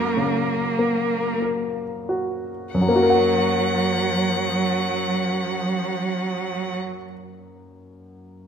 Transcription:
Already playing: F#2 A#3 F#4 A#4
0.17 C#3
0.79 A#3
1.42 A#4
2.09 F#4
2.74 F#2 F#3 F#5
2.81 F#3
2.89 A#3
2.96 F#4
3.03 A#4
3.10 F#5

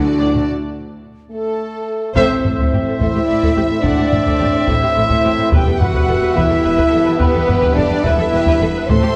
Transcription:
Already playing: D2 D3 D4 D5
0.05 A3 F#4 D5 A5
0.19 A2 F#3 D4 A4 D5 F#5
0.33 A3 F#4 D5 A5, taiko low-mid
1.31 A3 A4
2.14 A1 A2 C4 A4 C5 E5, taiko
2.18 A2
2.30 A2 G4
2.44 A1 A2 A4, taiko low
2.58 A2 A4, taiko
2.71 A1 A2 G4, taiko low
2.86 A2 A4
2.98 A1 A2 E4 A4 C5 E5, taiko
3.15 A2 G4
3.27 A1 A2 A4 D5
3.42 A2 A4, taiko
3.55 A1 A2 G4 E5
3.70 A2 A4
3.81 A1 A2 D4 A4 D5 F#5, taiko
3.97 A2 G4
4.11 A1 A2 A4 E5, taiko low
4.25 A2 A4, taiko
4.39 A1 A2 G4 D5, taiko low
4.53 A2 A4
4.66 A1 A2 E4 A4 C5 E5, taiko
4.82 A2 G4
4.95 A1 A2 A4 E5
5.09 A2 A4, taiko
5.24 A1 A2 G4 C5
5.38 A2 A4
5.51 E1 E2 G2 B3 G4 B4 E5 G5, taiko
5.66 E2 A4
5.79 E1 E2 F#4 B4 F#5, taiko low
5.94 E2 B4, taiko
6.08 E1 E2 A4, taiko low
6.22 E2 B4
6.35 E1 E2 E4 G4 B4 E5, taiko
6.49 E2 A4
6.64 E1 E2 B4
6.77 E2 B4, taiko
6.90 E1 E2 A4
7.04 E2 B4
7.18 E1 E2 B3 G4 B4, taiko
7.34 E2 A4
7.46 E1 E2 B4, taiko low
7.61 E2 B4, taiko
7.74 E1 E2 D4 A4 D5, taiko low
7.89 E2 B4
8.02 E1 E2 E4 A4 B4 E5, taiko
8.17 E2 A4
8.31 E1 E2 G4 B4
8.45 E2 B4, taiko
8.59 E1 E2 A4 B4
8.72 E2 B4
8.87 A1 A2 A3 A4 C5 E5 C6, taiko
9.02 A2 G4

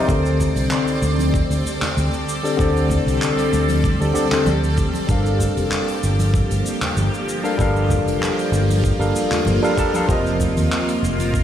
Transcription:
Already playing: C4 D5
0.07 D2 D3 G3 C4 G4 A4, kick, cabasa
0.11 D5
0.26 cabasa
0.40 kick, low conga, cabasa
0.56 C2, open hi-hat, cabasa
0.71 clap, cabasa
0.87 open hi-hat, cabasa
1.02 D2, cabasa
1.19 open hi-hat, high conga, cabasa
1.34 kick, cabasa
1.51 D2, open hi-hat, cabasa
1.66 cabasa
1.82 clap, open hi-hat, low conga, cabasa
1.97 D2, cabasa
2.13 cabasa
2.29 cabasa
2.43 D3 C4 G4 A4 D5, open hi-hat, cabasa
2.57 D2 D3 C4 G4 A4, kick, cabasa
2.61 D5
2.76 open hi-hat, cabasa
2.90 kick, low conga, cabasa
3.06 C2, open hi-hat, cabasa
3.22 clap, cabasa
3.38 open hi-hat, cabasa
3.53 D2, cabasa
3.69 open hi-hat, high conga, cabasa
3.84 kick, cabasa
4.00 D2 D3 C4 G4 A4 D5, open hi-hat, cabasa
4.13 D3 C4 G4 A4 D5, cabasa
4.31 D3 C4 G4 A4 C5, clap, open hi-hat, low conga, cabasa
4.46 D2, high conga, cabasa
4.64 cabasa
4.77 kick, cabasa
4.94 open hi-hat, high conga, cabasa
5.07 G1 F3 G3 A#3 D4 G4 A4 A#4, kick, cabasa
5.11 F5
5.26 cabasa
5.40 kick, low conga, cabasa
5.57 F1, open hi-hat, cabasa
5.71 clap, cabasa
5.88 open hi-hat, cabasa
6.03 G1, cabasa
6.19 open hi-hat, high conga, cabasa
6.34 kick, cabasa
6.50 G1, open hi-hat, cabasa
6.66 cabasa
6.82 clap, open hi-hat, low conga, cabasa
6.97 G1, cabasa
7.14 cabasa
7.29 cabasa
7.43 G3 D4 A4 A#4 F5, open hi-hat, cabasa
7.58 G1 G3 D4 F4 A4 A#4, kick, cabasa
7.62 F5
7.76 cabasa
7.90 kick, low conga, cabasa
8.06 F1, open hi-hat, cabasa
8.22 clap, cabasa
8.39 open hi-hat, cabasa
8.52 G1, cabasa
8.69 open hi-hat, high conga, cabasa
8.84 kick, cabasa
8.99 G1 G3 D4 A4 A#4 F5, open hi-hat, cabasa
9.16 cabasa
9.31 clap, open hi-hat, low conga, cabasa
9.45 G1, high conga, cabasa
9.62 G3 D4 A4 A#4 F5, cabasa
9.77 G3 D4 A4 A#4 A5, kick, cabasa
9.94 G3 D4 A4 A#4 F5, open hi-hat, high conga, cabasa
10.07 F1 D#3 F3 C4 G4 A#4 D#5, kick, cabasa
10.26 cabasa
10.40 kick, low conga, cabasa
10.57 D#2, open hi-hat, cabasa
10.72 clap, cabasa
10.88 open hi-hat, cabasa
11.03 F1, cabasa
11.18 open hi-hat, high conga, cabasa
11.34 kick, cabasa

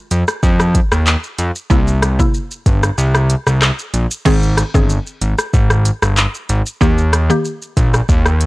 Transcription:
0.11 F2, closed hi-hat, shaker
0.28 cross-stick, shaker
0.43 F2, kick, shaker
0.60 cross-stick, shaker
0.75 kick, closed hi-hat, shaker
0.92 D#2, cross-stick, shaker
1.06 clap, shaker
1.24 shaker
1.38 F2, closed hi-hat, shaker
1.56 shaker
1.70 C2 C3 A#3 E4, kick, shaker
1.88 shaker
2.02 cross-stick, closed hi-hat, shaker
2.19 C3 A#3 E4, kick, shaker
2.34 shaker
2.51 shaker
2.66 G1, kick, closed hi-hat, shaker
2.83 cross-stick, shaker
2.98 C2, shaker
3.15 cross-stick, shaker
3.30 closed hi-hat, shaker
3.47 C2, cross-stick, shaker
3.62 cross-stick, clap, shaker
3.79 shaker
3.94 A#1, closed hi-hat, shaker
4.11 shaker
4.25 G#1 D#3 C4 G#4, kick, crash, shaker
4.43 shaker
4.57 cross-stick, closed hi-hat, shaker
4.74 G1 D#3 C4 G#4, kick, shaker
4.90 shaker
5.07 shaker
5.21 G#1, closed hi-hat, shaker
5.38 cross-stick, shaker
5.54 G#1, kick, shaker
5.70 cross-stick, shaker
5.85 closed hi-hat, shaker
6.02 G1, cross-stick, shaker
6.17 clap, shaker
6.34 shaker
6.49 G#1, closed hi-hat, shaker
6.66 shaker
6.81 D#2 D#3 A#3 G4, kick, shaker
6.98 shaker
7.13 cross-stick, closed hi-hat, shaker
7.30 D#3 A#3 G4, shaker
7.45 shaker
7.62 shaker
7.77 A#1, kick, closed hi-hat, shaker
7.94 cross-stick, shaker
8.09 D#2, kick, shaker
8.26 cross-stick, shaker
8.41 closed hi-hat, shaker

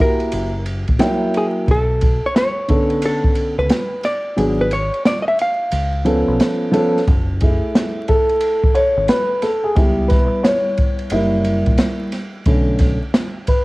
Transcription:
Already playing: F#4
0.00 A#3 E4 G4 A#4, kick
0.20 ride
0.32 F#1, ride
0.66 ride
0.88 A#1, kick, ride
0.99 F#3 A#3 E4 G5, snare, hi-hat pedal, ride
1.34 G#4, ride
1.68 B1 A4, kick, ride
2.01 kick, ride
2.26 C#5
2.36 C#5, snare, hi-hat pedal, ride
2.68 D3 B3 C#4 A4, kick, ride
2.90 ride
3.02 A4, ride
3.24 kick
3.35 ride
3.58 C#2 B4
3.70 snare, hi-hat pedal, ride
4.04 D5, snare, ride
4.37 G#1 F#3 B3 D4 G#4, ride
4.61 B4
4.71 C#5, ride
4.94 ride
5.05 D5, snare, hi-hat pedal, ride
5.22 D#5
5.28 E5
5.39 F5, ride
5.72 C#2, ride
6.05 F3 B3 C#4 A4, ride
6.28 B1
6.40 snare, hi-hat pedal, ride
6.71 F3 B3 C#4 A4, ride
6.97 snare
7.07 F#1, kick, ride
7.40 A3 E4 G#4, kick, ride
7.75 snare, hi-hat pedal, ride
8.08 A4, kick, ride
8.29 ride
8.40 ride
8.64 kick
8.75 C#5, ride
8.97 G#1
9.08 B4, snare, hi-hat pedal, ride
9.42 A4, snare, ride
9.64 G#4
9.75 C#2 G3 B3 E4 G4, kick, ride
10.08 B4, kick, snare, ride
10.43 C#5, snare, hi-hat pedal, ride
10.77 kick, ride
10.99 ride
11.10 F#1 G3 A#3 E4, ride
11.45 ride
11.66 A#1, kick, ride
11.78 snare, hi-hat pedal, ride
12.12 snare, ride
12.46 B1 D3 A3 C#4, kick, ride
12.79 kick, snare, ride
13.14 snare, hi-hat pedal, ride
13.47 B4, kick, ride

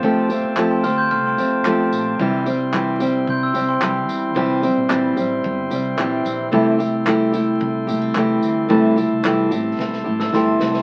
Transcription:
Already playing: C4 F4 C5 G5 A5
0.03 F2 F3 A3 C4 G4, kick
0.29 A3 C4 G4, tambourine
0.43 E2
0.56 F2 F3 A3 C4 G4, clap
0.70 G5 C6
0.83 D2 A3 C4 G4 C6 F6, tambourine
0.98 C6 G6
1.11 C2 A3 C6 F6, kick
1.27 G5 C6
1.38 F2 A3 C4 G4, tambourine
1.65 E2 F3 A3 C4 G4, clap
1.92 A#1 C4, tambourine
2.19 C2 C3 E3 G3 C4 E4 G4 C6, kick
2.46 G3 C4 G4, tambourine
2.73 E3 G3 C4 G4, clap
3.00 G3 C4 G4, tambourine
3.27 C3 G3 C6 G6, kick
3.43 E6
3.54 C2 G3 C4 G4, tambourine
3.68 G5 C6
3.81 C2 E3 G3 C4 G4, clap
4.08 E2 C4, tambourine
4.35 C2 C3 E3 G3 C4 G4, kick
4.62 G3 C4 G4, tambourine
4.77 A#1
4.88 A#1 E3 G3 C4 G4, clap
5.17 A1 G3 C4 G4, tambourine
5.44 G1 G3, kick
5.70 C2 G3 C4 G4, tambourine
5.97 A#1 E3 G3 C4 G4, clap
6.25 A#1 C4, tambourine
6.52 C2 C3 E3 G3 A3 E4 G4 A4 G5, kick
6.78 A3 C4 E4 G4, tambourine
7.05 E3 G3 A3 E4 G4, clap
7.32 A3 C4 E4 G4, tambourine
7.60 C3 G3, kick
7.87 C2 A3 A#3 E4 G4, tambourine
8.01 C4
8.14 C2 E3 G3 A3 E4 G4, clap
8.42 D2 C4, tambourine
8.69 C2 C3 E3 G3 A3 E4 G4 A5, kick
8.96 A3 C4 E4 G4, tambourine
9.12 C2
9.23 C2 E3 G3 A3 E4 G4, clap
9.51 A1 A3 C4 E4 G4, tambourine
9.79 E1 G3, kick, snare
9.93 snare
10.04 A1 A3 C4 E4 G4
10.19 A5 E6, snare
10.32 G1 E3 G3 A3 E4 G4 G5 C6, snare
10.46 A5
10.60 C2 C4, snare
10.74 snare

